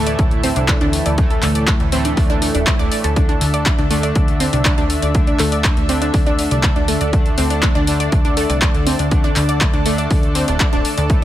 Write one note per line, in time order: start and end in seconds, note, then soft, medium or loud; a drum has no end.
0.00 0.15 D2 loud
0.00 1.15 A2 medium
0.00 1.15 E3 medium
0.00 1.15 A3 loud
0.00 3.12 A3 medium
0.00 3.12 E4 medium
0.00 3.12 A4 medium
0.07 0.18 D5 medium
0.07 0.18 D6 medium
0.07 closed hi-hat medium
0.19 0.53 D2 medium
0.19 kick loud
0.19 closed hi-hat medium
0.31 closed hi-hat soft
0.43 0.56 C4 loud
0.43 0.56 C5 medium
0.43 open hi-hat loud
0.56 0.77 C2 medium
0.56 0.61 D4 medium
0.56 0.61 D5 medium
0.56 closed hi-hat medium
0.68 0.73 D4 medium
0.68 0.73 D5 medium
0.68 kick loud
0.68 clap loud
0.68 closed hi-hat medium
0.81 1.02 D2 medium
0.81 0.89 D4 loud
0.81 0.89 D5 medium
0.81 closed hi-hat soft
0.93 open hi-hat loud
1.06 1.40 D2 medium
1.06 1.13 D5 medium
1.06 1.13 D6 medium
1.06 closed hi-hat medium
1.18 1.90 A2 medium
1.18 1.90 E3 medium
1.18 1.89 A3 medium
1.18 kick loud
1.18 closed hi-hat medium
1.30 1.38 A4 medium
1.30 1.38 A5 medium
1.30 closed hi-hat soft
1.43 1.77 D2 loud
1.43 1.51 A3 loud
1.43 1.51 A4 medium
1.43 clap medium
1.43 open hi-hat loud
1.55 1.67 D5 medium
1.55 1.67 D6 medium
1.55 closed hi-hat medium
1.67 kick loud
1.67 clap loud
1.67 closed hi-hat medium
1.80 2.14 D2 loud
1.80 closed hi-hat soft
1.92 2.77 A2 medium
1.92 2.77 E3 medium
1.92 2.77 A3 medium
1.92 2.04 C4 loud
1.92 2.04 C5 medium
1.92 open hi-hat loud
2.05 2.10 D4 medium
2.05 2.10 D5 medium
2.05 closed hi-hat medium
2.17 2.51 D2 medium
2.17 2.22 D4 medium
2.17 2.22 D5 medium
2.17 kick loud
2.17 open hi-hat medium
2.30 2.37 D4 loud
2.30 2.37 D5 medium
2.30 closed hi-hat soft
2.42 2.47 D4 medium
2.42 2.47 D5 medium
2.42 open hi-hat loud
2.55 2.65 D1 medium
2.55 2.66 D4 medium
2.55 2.66 D5 medium
2.55 closed hi-hat medium
2.67 kick loud
2.67 clap loud
2.67 closed hi-hat medium
2.79 2.90 D1 medium
2.79 3.13 A2 medium
2.79 3.13 E3 medium
2.79 3.13 A3 medium
2.79 2.90 D5 loud
2.79 2.90 D6 medium
2.79 closed hi-hat soft
2.91 2.96 D5 loud
2.91 2.96 D6 medium
2.91 open hi-hat loud
3.04 3.38 D2 loud
3.04 3.09 A4 medium
3.04 3.09 A5 medium
3.04 closed hi-hat medium
3.16 3.88 D3 medium
3.16 3.88 A3 medium
3.16 3.21 D4 medium
3.16 3.88 D4 medium
3.16 11.06 D4 medium
3.16 11.24 A4 medium
3.16 3.21 D5 medium
3.16 7.09 E5 medium
3.16 kick loud
3.16 closed hi-hat medium
3.29 3.37 D4 loud
3.29 3.37 D5 medium
3.29 closed hi-hat soft
3.41 3.75 D2 loud
3.41 open hi-hat loud
3.54 3.61 D5 medium
3.54 3.61 D6 medium
3.54 closed hi-hat medium
3.66 kick loud
3.66 clap loud
3.66 closed hi-hat medium
3.79 4.12 D2 loud
3.79 3.86 D4 medium
3.79 3.86 D5 medium
3.79 closed hi-hat soft
3.91 5.12 D3 medium
3.91 3.99 A3 loud
3.91 5.12 A3 medium
3.91 5.12 D4 loud
3.91 3.99 A4 medium
3.91 open hi-hat loud
4.03 4.15 D5 medium
4.03 4.15 D6 medium
4.03 closed hi-hat medium
4.15 4.49 D2 medium
4.15 kick loud
4.15 closed hi-hat medium
4.28 closed hi-hat soft
4.40 4.52 C4 loud
4.40 4.52 C5 medium
4.40 open hi-hat loud
4.53 4.73 C2 loud
4.53 4.58 D4 medium
4.53 4.58 D5 medium
4.53 closed hi-hat medium
4.65 4.70 D4 medium
4.65 4.70 D5 medium
4.65 kick loud
4.65 clap loud
4.65 closed hi-hat medium
4.78 4.98 D2 medium
4.78 4.85 D4 loud
4.78 4.85 D5 medium
4.78 closed hi-hat soft
4.90 open hi-hat loud
5.02 5.36 D2 medium
5.02 5.10 D5 medium
5.02 5.10 D6 medium
5.02 closed hi-hat medium
5.15 5.86 D3 medium
5.15 5.86 A3 medium
5.15 5.86 D4 medium
5.15 kick loud
5.15 closed hi-hat medium
5.27 5.35 D4 medium
5.27 5.35 D5 medium
5.27 closed hi-hat soft
5.39 5.73 D2 loud
5.39 5.48 A3 loud
5.39 5.47 A4 medium
5.39 clap medium
5.39 open hi-hat loud
5.52 5.64 D5 medium
5.52 5.64 D6 medium
5.52 closed hi-hat medium
5.64 kick loud
5.64 clap loud
5.64 closed hi-hat medium
5.77 6.11 D2 loud
5.77 closed hi-hat soft
5.89 7.10 D3 medium
5.89 7.10 A3 medium
5.89 6.01 C4 loud
5.89 7.10 D4 medium
5.89 6.01 C5 medium
5.89 open hi-hat loud
6.02 6.06 D4 medium
6.02 6.06 D5 medium
6.02 closed hi-hat medium
6.14 6.48 D2 medium
6.14 6.19 D4 medium
6.14 6.19 D5 medium
6.14 kick loud
6.14 open hi-hat medium
6.26 6.34 D4 loud
6.26 6.34 D5 medium
6.26 closed hi-hat soft
6.39 open hi-hat loud
6.51 6.72 C2 medium
6.51 6.59 D5 medium
6.51 6.59 D6 medium
6.51 closed hi-hat medium
6.63 kick loud
6.63 clap loud
6.63 closed hi-hat medium
6.76 6.96 D2 medium
6.76 6.84 D4 medium
6.76 6.84 D5 medium
6.76 closed hi-hat soft
6.88 6.96 A3 loud
6.88 6.96 A4 medium
6.88 open hi-hat loud
7.01 7.34 D2 medium
7.01 7.12 D5 medium
7.01 7.12 D6 medium
7.01 closed hi-hat medium
7.13 7.85 D3 medium
7.13 7.85 A3 medium
7.13 7.85 D4 medium
7.13 11.06 D5 medium
7.13 kick loud
7.13 closed hi-hat medium
7.26 closed hi-hat soft
7.38 7.72 D2 loud
7.38 7.50 C4 loud
7.38 7.50 C5 medium
7.38 open hi-hat loud
7.50 7.55 D4 medium
7.50 7.55 D5 medium
7.50 closed hi-hat medium
7.63 7.67 D4 medium
7.63 7.67 D5 medium
7.63 kick loud
7.63 clap loud
7.63 closed hi-hat medium
7.75 8.09 D2 loud
7.75 7.83 D4 loud
7.75 7.83 D5 medium
7.75 closed hi-hat soft
7.87 9.09 D3 medium
7.87 9.09 A3 medium
7.87 9.09 D4 medium
7.87 open hi-hat loud
8.00 8.08 D5 medium
8.00 8.08 D6 medium
8.00 closed hi-hat medium
8.12 8.46 D2 medium
8.12 kick loud
8.12 closed hi-hat medium
8.25 8.33 D4 medium
8.25 8.33 D5 medium
8.25 closed hi-hat soft
8.37 8.45 A3 loud
8.37 8.45 A4 medium
8.37 open hi-hat loud
8.50 8.70 C2 loud
8.50 8.61 D5 medium
8.50 8.61 D6 medium
8.50 closed hi-hat medium
8.62 kick loud
8.62 clap loud
8.62 closed hi-hat medium
8.74 8.95 D2 medium
8.74 closed hi-hat soft
8.87 8.99 C4 loud
8.87 8.99 C5 medium
8.87 open hi-hat loud
8.99 9.33 D2 medium
8.99 9.04 D4 medium
8.99 9.04 D5 medium
8.99 closed hi-hat medium
9.11 9.83 D3 medium
9.11 9.83 A3 medium
9.11 9.83 D4 medium
9.11 9.16 D4 medium
9.11 9.16 D5 medium
9.11 kick loud
9.11 closed hi-hat medium
9.24 9.32 D4 loud
9.24 9.32 D5 medium
9.24 closed hi-hat soft
9.36 9.70 D2 loud
9.36 clap medium
9.36 open hi-hat loud
9.49 9.56 D5 medium
9.49 9.56 D6 medium
9.49 closed hi-hat medium
9.61 kick loud
9.61 clap loud
9.61 closed hi-hat medium
9.74 10.07 D2 loud
9.74 9.81 D4 medium
9.74 9.81 D5 medium
9.74 closed hi-hat soft
9.86 11.07 D3 medium
9.86 11.07 A3 medium
9.86 9.94 A3 loud
9.86 11.07 D4 loud
9.86 9.94 A4 medium
9.86 open hi-hat loud
9.98 10.10 D5 medium
9.98 10.10 D6 medium
9.98 closed hi-hat medium
10.10 10.45 D2 medium
10.10 kick loud
10.10 open hi-hat medium
10.23 closed hi-hat soft
10.35 10.47 C4 loud
10.35 10.47 C5 medium
10.35 open hi-hat loud
10.48 10.58 D1 medium
10.48 10.53 D4 medium
10.48 10.53 D5 medium
10.48 closed hi-hat medium
10.60 10.65 D4 medium
10.60 10.65 D5 medium
10.60 kick loud
10.60 clap loud
10.60 closed hi-hat medium
10.73 10.83 D1 medium
10.73 10.80 D4 loud
10.73 10.80 D5 medium
10.73 closed hi-hat soft
10.85 open hi-hat loud
10.98 11.24 D2 loud
10.98 11.05 D5 medium
10.98 11.05 D6 medium
10.98 closed hi-hat medium
11.10 11.24 A2 medium
11.10 11.24 E3 medium
11.10 11.24 A3 medium
11.10 11.24 E4 medium
11.10 kick loud
11.10 closed hi-hat soft